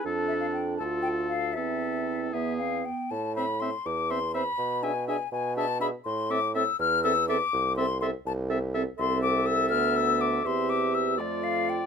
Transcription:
X:1
M:6/8
L:1/16
Q:3/8=81
K:Am
V:1 name="Flute"
z2 e f g2 a2 g2 f2 | e6 e2 f2 g2 | a2 b2 c'2 d'2 c'2 b2- | b2 ^g2 g2 g2 a2 b2 |
c'2 d'2 e'2 f'2 e'2 d'2- | d'2 c'2 c'2 a2 z4 | [K:Ddor] c'2 d'2 e'2 f'2 e'2 d'2 | c'2 d'2 e'2 d2 f2 g2 |]
V:2 name="Oboe"
A6 A6 | A6 ^G4 z2 | z2 e2 e2 z2 e2 e2 | z2 e2 e2 z2 e2 e2 |
z2 e2 e2 z2 e2 e2 | z2 e2 e2 z2 e2 e2 | [K:Ddor] e12 | e6 d6 |]
V:3 name="Clarinet"
D6 F6 | C6 B,2 C2 B,2 | z2 c2 c2 z2 c2 c2 | z2 ^G2 G2 z2 G2 G2 |
z2 A2 A2 z2 A2 A2 | z2 A2 A2 z2 A2 A2 | [K:Ddor] A12 | G6 F6 |]
V:4 name="French horn"
A6 F6 | E8- E z3 | z2 C2 C2 z2 C2 C2 | z2 D2 D2 z2 D2 D2 |
z2 C2 C2 z2 C2 C2 | z2 C2 C2 z2 C2 C2 | [K:Ddor] C6 B,6 | C6 A,6 |]
V:5 name="Bassoon" clef=bass
F,,6 D,,6 | E,,6 E,,4 z2 | A,,6 E,,6 | B,,6 B,,6 |
A,,6 E,,6 | C,,6 C,,6 | [K:Ddor] C,,6 D,,6 | E,,6 F,,6 |]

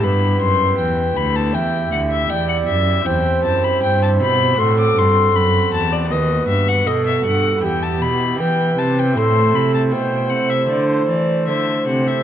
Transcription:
X:1
M:4/4
L:1/16
Q:1/4=79
K:Em
V:1 name="Violin"
b2 c'2 g2 b a g2 f e g f e2 | g2 a b g a b2 c' d' c'2 b2 a d | ^d2 e f d e f2 g a b2 g2 a g | c'2 b a g2 f e d c d2 e2 f e |]
V:2 name="Flute"
B8 e4 d4 | c8 A6 z2 | B4 A4 G4 B4 | A4 c8 c4 |]
V:3 name="Pipe organ"
[B,EG]16 | [CEG]8 [CF]8 | [B,F]8 [B,EG]8 | [A,Ec]16 |]
V:4 name="Pipe organ" clef=bass
G,,2 F,,2 E,,2 D,,2 E,,2 D,,2 E,,2 F,,2 | E,,2 F,,2 G,,2 B,,2 A,,2 G,,2 F,,2 E,,2 | ^D,,2 G,,2 B,,2 G,,2 E,,2 B,,2 E,2 C,2 | A,,2 C,2 B,,2 C,2 D,2 E,2 D,2 C,2 |]
V:5 name="Cello" clef=bass
G,,2 F,,2 E,,2 D,,2 E,,2 D,,2 E,,2 F,,2 | E,,2 F,,2 G,,2 B,,2 A,,2 G,,2 F,,2 E,,2 | ^D,,2 G,,2 B,,2 G,,2 E,,2 B,,2 E,2 C,2 | A,,2 C,2 B,,2 C,2 D,2 E,2 D,2 C,2 |]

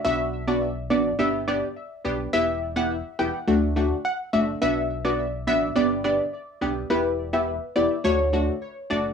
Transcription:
X:1
M:4/4
L:1/16
Q:1/4=105
K:Bm
V:1 name="Synth pluck"
e2 z d z2 d z e z d z4 z | e2 z f z2 g z4 z f z e z | e2 z d z2 e z d z d z4 z | B2 z e z2 d z c3 z3 d z |]
V:2 name="Synth stab"
[B,DF]3 [B,DF] z2 [B,DF] z [B,DG]2 [B,DG] z3 [B,DG]2 | [B,EG]3 [B,EG] z2 [B,EG] z [A,DF]2 [A,DF] z3 [A,DF]2 | [B,DF]3 [B,DF] z2 [B,DF] z [B,DG]2 [B,DG] z3 [B,DG]2 | [B,EG]3 [B,EG] z2 [B,EG] z [A,DF]2 [A,DF] z3 [A,DF]2 |]
V:3 name="Sub bass" clef=bass
B,,,6 A,,,2 G,,,4 z2 B,,,2 | E,,,4- E,,, z E,,, z D,,4 z2 F,,,2 | B,,,6 A,,,2 G,,,4 z2 B,,,2 | E,,,4- E,,, z E,,, z D,,4 z2 F,,,2 |]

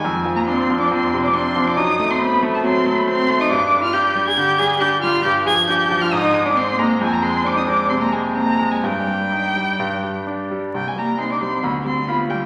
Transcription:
X:1
M:4/4
L:1/16
Q:1/4=136
K:Gphr
V:1 name="Violin"
a3 b c'3 d' c'3 d' c'3 d' | e'3 c' =b3 =a c'3 b c'3 e' | d'3 f' g'3 a' g'2 a'2 g'2 f'2 | g'2 a'2 g'3 f' e'3 d' c'2 b2 |
a b c'2 d' e' d'2 c' b a2 b3 a | g12- g2 z2 | g a b2 c' d' c'2 =b2 c'2 b2 g2 |]
V:2 name="Cello"
A,3 B, C3 D C3 D C3 D | E3 C =B,3 =A, C3 B, C3 E | D3 F G3 A G2 A2 G2 F2 | G2 A2 G3 F E3 D C2 B,2 |
A, B, C2 D E D2 C B, A,2 B,3 A, | G,12- G,2 z2 | G, A, B,2 C D C2 =B,2 C2 B,2 G,2 |]
V:3 name="Grand piano" clef=bass
F,,2 F,2 D2 F,2 F,,2 C,2 D2 F,2 | ^F,,2 =A,2 C2 A,2 ^F,2 A,2 C2 A,2 | G,,2 G,2 D2 G,2 D,2 G,2 D2 G,2 | G,,2 F,2 D2 F,2 A,,2 A,2 C2 A,2 |
F,,2 A,2 C2 A,2 C,2 A,2 C2 A,2 | G,,2 G,2 E2 G,2 G,,2 G,2 D2 G,2 | C,,2 G,2 E2 G,2 D,,2 G,2 F2 G,2 |]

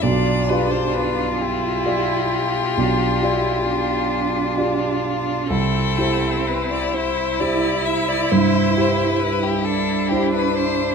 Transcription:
X:1
M:12/8
L:1/16
Q:3/8=44
K:C
V:1 name="Violin"
d2 B c B2 G16 z2 | A4 B d c2 d2 e d c4 B G A2 G B c2 |]
V:2 name="Grand piano"
B,,,2 [FGd]6 [FGd]4 B,,,2 [FGd]6 [FGd]4 | C,,2 [EGc]6 [EGc]4 G,,2 [EGc]6 [EGc]4 |]
V:3 name="Violin"
F24 | E24 |]
V:4 name="Cello"
D6 E6 D2 E2 D8 | C6 E12 D6 |]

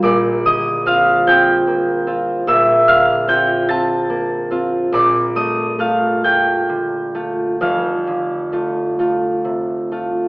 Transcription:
X:1
M:6/8
L:1/8
Q:3/8=47
K:Bb
V:1 name="Harp"
[dfd'f'] [ee'] [ff'] [gg']3 | [=e=e'] [ff'] [gg'] [aa']3 | [dd'] [ee'] [ff'] [gg']3 | [ff']6 |]
V:2 name="Harp"
[B,,,B,,G,B,F] D, [CF] [CF] B, [CF] | [B,,,B,,] D, [CF] [CF] B, [CF] | [B,,,B,,] A, [A,F] [A,F] D, [A,F] | [F,,,F,,] D, [A,F] [A,F] C, [A,F] |]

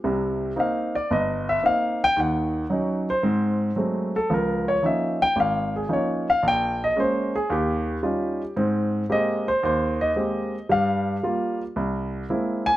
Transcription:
X:1
M:4/4
L:1/8
Q:"Swing" 1/4=113
K:Ab
V:1 name="Grand piano"
z2 f =d e =e f g | _g3 c3 z =A | B d =e g f A d f | g e c A G4 |
z2 e c c e3 | f3 z4 a |]
V:2 name="Grand piano"
[C,,C,]2 [B,CE] z G,,,2 [B,CE] z | [E,,E,]2 [_G,DE] z [A,,C]2 [G,A,=A,C] z | [D,,F,]2 [F,B,DE] z A,,,2 [F,B,DE] z | B,,,2 [A,B,D] z E,,2 [G,DEF] z |
[A,,C]2 [A,B,CG] z E,,2 [A,B,CG] z | [G,,G,]2 [G,B,F] z C,,2 [A,B,C=E] z |]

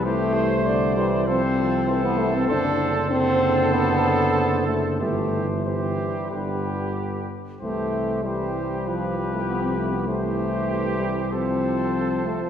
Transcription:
X:1
M:4/4
L:1/16
Q:1/4=97
K:C
V:1 name="Cornet"
c4 d4 c4 c4 | c4 c12 | c4 c4 B6 z2 | c4 c4 B8 |
c8 c8 |]
V:2 name="Trumpet"
G2 c6 A4 A4 | A4 A12 | G4 G4 G6 z2 | G4 G4 G8 |
G8 A8 |]
V:3 name="French horn"
A,6 G,2 C4- C B, A, C | D4 C4 B,6 A,2 | A,3 z G,8- G,2 z2 | A,4 G,4 F,2 G, A, B, C A, B, |
A,6 G,2 C6 A, F, |]
V:4 name="Euphonium" clef=bass
E,4 D,2 E,2 F,2 F,2 E,4 | D,4 D,12 | E,4 E,4 D,6 z2 | E,4 E,4 F,8 |
E,8 F,8 |]
V:5 name="Tuba" clef=bass
C,,16 | ^F,,,16 | G,,,8 G,,,6 z2 | C,,16- |
C,,16 |]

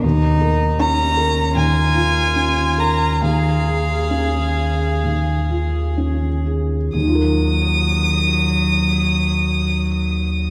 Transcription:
X:1
M:4/4
L:1/8
Q:1/4=67
K:Ebm
V:1 name="Violin"
z2 b2 a3 b | f6 z2 | e'8 |]
V:2 name="Cello"
E2 D2 F4 | A6- A z | G,8 |]
V:3 name="Felt piano"
E,, B D B E,, F D B | E,, A D A E,, F D A | [E,,E,FB]8 |]
V:4 name="Sub bass" clef=bass
E,,8- | E,,8 | E,,8 |]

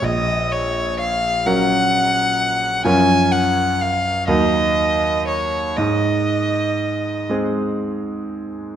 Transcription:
X:1
M:6/8
L:1/8
Q:3/8=41
K:Gblyd
V:1 name="Violin"
e d f g3 | a g f e2 d | e3 z3 |]
V:2 name="Grand piano"
B,,,3 [G,DB]3 | [G,,F,DB]3 [E,,G,EB]3 | A,,3 [A,CA]3 |]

